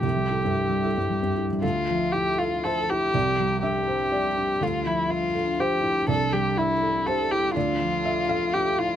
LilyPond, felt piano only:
\new Staff \with { instrumentName = "Felt piano" } { \time 3/4 \key d \minor \tempo 4 = 122 << { r2. | a'2 c''4 | d''4 e''4 d''4 | a'2 c''4 |
d''4 e''4 c''4 | d''4. f''4. | } \\ { c,16 g16 <e' a'>16 g,8 g16 <e' a'>16 g,16 g16 g,16 <e' a'>16 g16 | d,8 f8 e'8 a'8 f'8 e'8 | c,8 g8 d'8 c''8 g'8 d'8 | d,8 f8 e''8 a'8 f'8 e'8 |
c,8 g8 e'8 a'8 g'8 e'8 | d,8 f8 e''8 a'8 f'8 e'8 | } >> }